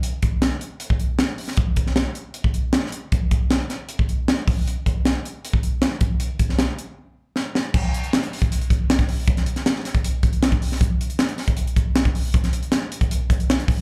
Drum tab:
CC |----------------|----------------|----------------|----------------|
HH |x-x-x-x-x-x-x-o-|x-x-x-x-x-x-x-x-|x-x-x-x-x-x-x-o-|x-x-x-x-x-x-x-x-|
SD |----o-------o--o|---oo-------o---|----o-o-----o---|----o-------o---|
BD |--o------o------|o-o------o------|o-o------o----o-|--o------o----o-|

CC |----------------|x---------------|----------------|----------------|
HH |x-x-x-x---------|--xxxxoxxxx-xxo-|xxxxx-xxx-xxxxo-|x-xxxxoxxxx-xxo-|
SD |---oo-------o-o-|----o-------oo--|-o-oooo-----o--o|----o-o-----o---|
BD |--o-------------|o------o--o--o--|o------o--o--o--|o------o--o--o--|

CC |----------------|
HH |xxxxx-xxx-xxxxo-|
SD |-o--o-------o---|
BD |o------o--o---o-|